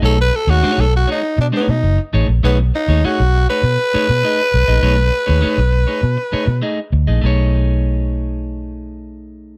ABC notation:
X:1
M:4/4
L:1/16
Q:1/4=100
K:Bmix
V:1 name="Tenor saxophone"
A B A F2 A F D2 =D B, ^D2 z3 | B,2 D2 F3 B8- B- | B12 z4 | z16 |]
V:2 name="Clean electric guitar"
[A,DGc] z2 [A,DGc] [A,DGc] z2 [A,DGc] z2 [A,DGc] z3 [A,DGc] z | [A,DGc] z2 [A,DGc] [A,DGc] z2 [A,DGc] z2 [A,DGc] z [A,DGd] z2 [A,DGd] | [A,DGc] z2 [A,DGc] [A,DGc] z2 [A,DGc] z2 [A,DGc] z [A,DGd] z2 [A,DGd] | [A,DGc]16 |]
V:3 name="Fingered electric bass" clef=bass
B,,,2 z D,, z B,,,2 z2 B,, z B,, F,,, z A,,, ^A,,, | B,,,2 z D,, z B,,,2 z B,, z2 B,, z2 B,,, ^A,,, | B,,,2 z D,, z B,,,2 z B,, z2 B,, z2 =D,, ^A,,, | B,,,16 |]